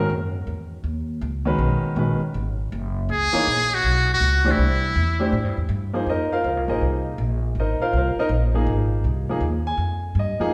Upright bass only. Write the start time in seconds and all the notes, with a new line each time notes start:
0.10 F#2
0.47 E2
0.84 D#2
1.21 C#2
1.59 B1
1.83 muted upright bass stroke
1.96 A#1
2.21 muted upright bass stroke
2.34 G#1
2.72 F#1
3.09 C#2
3.34 muted upright bass stroke
3.47 A#1
3.84 B1
4.20 C#2
4.58 C2
4.96 E2
5.32 A2
5.44 G2
5.57 E2
5.69 G2
6.06 F2
6.44 C#2
6.57 C2
6.68 G#1
6.81 C2
7.18 A#1
7.55 G#1
7.80 muted upright bass stroke
7.93 C2
8.16 muted upright bass stroke
8.29 A#1
8.67 G#1
9.04 C2
9.41 D#2
9.78 F2
10.15 G2
10.40 muted upright bass stroke